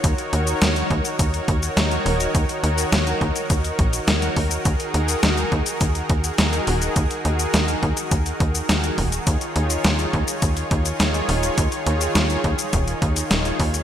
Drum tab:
HH |xxxxxxxxxxxxxxox|xxxxxxxxxxxxxxox|xxxxxxxxxxxxxxox|xxxxxxxxxxxxxxox|
SH |xx-xxx-xxx-xxx-x|xx-xxx-xxx-xxx-x|xx-xxx-xxx-xxx-x|xx-xxx-xxx-xxx-x|
SD |----o-------o---|----o-------o---|----o-------o---|----o-------o---|
BD |o-----o-o-o-----|o-----o-o-o---o-|o-----o-o-o-----|o-----o-o-o---o-|

HH |xxxxxxxxxxxxxxox|xxxxxxxxxxxxxxox|
SH |xx-xxx-xxx-xxx-x|xx-xxx-xxx-xxx-x|
SD |----o-------o---|----o-------o---|
BD |o-----o-o-o-----|o-----o-o-o---o-|